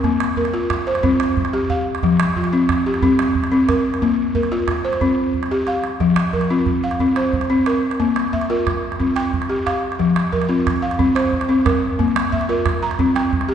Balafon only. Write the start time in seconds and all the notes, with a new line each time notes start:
Already playing: A#4
0.04 A#3
0.37 A#4
0.54 F4
0.87 C5
1.03 C4
1.53 G4
1.70 F5
2.03 F3
2.37 F4
2.53 C4
2.86 G4
3.03 C4
3.52 C4
3.68 A#4
4.02 A#3
4.35 A#4
4.52 F4
4.85 C5
5.01 C4
5.51 G4
5.67 F5
6.00 F3
6.33 A#4
6.50 C4 F4
6.84 F5
7.00 C4
7.17 C5
7.50 C4
7.67 A#4
8.00 A#3
8.33 E5
8.50 F4 A#4
9.00 C4
9.16 G5
9.49 G4
9.66 F5
9.99 F3
10.32 A#4
10.49 C4 F4
10.82 F5
10.99 C4
11.15 C5
11.49 C4
11.65 A#4
11.99 A#3
12.32 E5
12.49 F4 A#4
12.83 A#5
12.99 C4
13.15 G5
13.49 G4